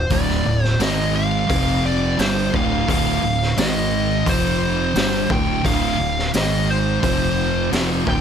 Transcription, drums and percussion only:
0.10 kick, open hi-hat
0.30 snare
0.64 snare
0.80 snare, open hi-hat
1.50 kick, open hi-hat
2.19 snare, open hi-hat
2.54 kick
2.88 kick, open hi-hat
3.42 snare
3.57 snare, open hi-hat
4.26 kick, open hi-hat
4.95 snare, open hi-hat
5.30 kick
5.65 kick, open hi-hat
6.19 snare
6.34 snare, open hi-hat
7.03 kick, open hi-hat
7.73 snare, open hi-hat
8.07 kick

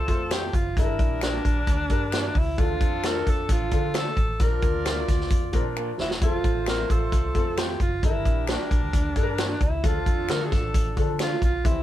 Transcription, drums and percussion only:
0.08 kick, closed hi-hat
0.31 finger snap, snare, closed hi-hat
0.53 kick, closed hi-hat
0.77 kick, closed hi-hat
0.99 kick, closed hi-hat
1.21 finger snap, snare, closed hi-hat
1.45 kick, closed hi-hat
1.67 kick, closed hi-hat
1.90 kick, closed hi-hat
2.12 finger snap, snare, closed hi-hat
2.35 kick, open hi-hat
2.58 kick, closed hi-hat
2.81 kick, closed hi-hat
3.04 finger snap, snare, closed hi-hat
3.27 kick, closed hi-hat
3.49 kick, closed hi-hat
3.71 kick, closed hi-hat
3.94 finger snap, snare, closed hi-hat
4.17 kick, closed hi-hat
4.40 kick, closed hi-hat
4.62 kick, closed hi-hat
4.85 finger snap, snare, closed hi-hat
5.08 kick, snare, closed hi-hat
5.21 snare
5.30 kick, closed hi-hat
5.53 kick, closed hi-hat
5.77 finger snap
6.00 snare
6.11 snare
6.21 kick, closed hi-hat
6.44 kick, closed hi-hat
6.66 finger snap, snare, closed hi-hat
6.90 kick, closed hi-hat
7.12 kick, closed hi-hat
7.35 kick, closed hi-hat
7.57 finger snap, snare, closed hi-hat
7.80 kick, closed hi-hat
8.03 kick, closed hi-hat
8.25 kick, closed hi-hat
8.47 finger snap, snare, closed hi-hat
8.71 kick, closed hi-hat
8.93 kick, closed hi-hat
9.16 kick, closed hi-hat
9.38 finger snap, snare, closed hi-hat
9.61 kick, closed hi-hat
9.84 kick, closed hi-hat
10.06 kick, closed hi-hat
10.29 finger snap, snare, closed hi-hat
10.52 kick, snare, closed hi-hat
10.74 kick, closed hi-hat
10.97 kick, closed hi-hat
11.19 finger snap, snare, closed hi-hat
11.42 kick, closed hi-hat
11.65 kick, closed hi-hat

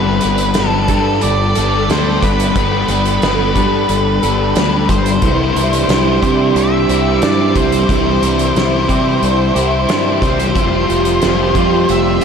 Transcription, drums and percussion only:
0.21 closed hi-hat
0.38 closed hi-hat
0.54 snare, closed hi-hat
0.88 kick, closed hi-hat
1.21 closed hi-hat
1.55 closed hi-hat
1.90 snare, closed hi-hat
2.23 kick, snare, closed hi-hat
2.40 closed hi-hat
2.56 kick, closed hi-hat
2.88 closed hi-hat
3.06 closed hi-hat
3.22 snare, closed hi-hat
3.56 kick, closed hi-hat
3.89 closed hi-hat
4.23 closed hi-hat
4.56 snare, closed hi-hat
4.89 kick, snare, closed hi-hat
5.06 closed hi-hat
5.22 kick, closed hi-hat
5.56 closed hi-hat
5.73 closed hi-hat
5.89 snare, closed hi-hat
6.23 kick, closed hi-hat
6.56 closed hi-hat
6.89 closed hi-hat
7.22 snare, closed hi-hat
7.55 kick, closed hi-hat
7.72 closed hi-hat
7.89 kick, closed hi-hat
8.23 closed hi-hat
8.39 closed hi-hat
8.56 snare, closed hi-hat
8.89 kick, closed hi-hat
9.23 closed hi-hat
9.56 closed hi-hat
9.89 snare, closed hi-hat
10.22 kick, snare, closed hi-hat
10.40 closed hi-hat
10.56 kick, closed hi-hat
10.90 closed hi-hat
11.05 closed hi-hat
11.22 snare, closed hi-hat
11.55 kick, closed hi-hat
11.89 closed hi-hat
12.21 closed hi-hat

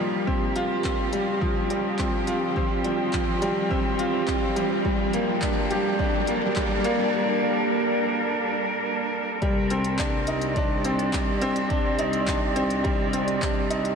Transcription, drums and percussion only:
0.28 kick
0.56 closed hi-hat
0.84 kick, clap
1.13 closed hi-hat
1.42 kick
1.70 closed hi-hat
1.99 kick, clap
2.27 closed hi-hat
2.56 kick
2.84 closed hi-hat
3.13 kick, clap
3.42 closed hi-hat
3.71 kick
3.99 closed hi-hat
4.28 kick, clap
4.56 closed hi-hat
4.85 kick
5.13 closed hi-hat
5.42 kick, clap
5.71 closed hi-hat
5.99 kick
6.27 closed hi-hat
6.56 kick, clap
6.84 closed hi-hat
9.42 kick, closed hi-hat
9.70 closed hi-hat
9.84 closed hi-hat
9.99 kick, clap, closed hi-hat
10.27 closed hi-hat
10.41 closed hi-hat
10.56 kick, closed hi-hat
10.84 closed hi-hat
10.99 closed hi-hat
11.13 kick, clap, closed hi-hat
11.42 closed hi-hat
11.56 closed hi-hat
11.70 kick, closed hi-hat
11.99 closed hi-hat
12.13 closed hi-hat
12.27 kick, clap, closed hi-hat
12.56 closed hi-hat
12.70 closed hi-hat
12.85 kick, closed hi-hat
13.13 closed hi-hat
13.28 closed hi-hat
13.42 kick, clap, closed hi-hat
13.71 closed hi-hat
13.85 closed hi-hat

